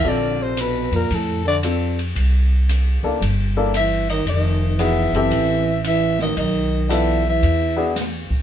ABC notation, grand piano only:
X:1
M:4/4
L:1/8
Q:"Swing" 1/4=114
K:F
V:1 name="Grand piano"
[CDFA]3 z3 [CDFA] z | z3 [B,DEA] z [B,DEA] z2 | z2 [=B,_E_G_A] [C=E=G=A]2 z3 | z2 [=B,DFA] z2 [B,D_G^G] z2 |]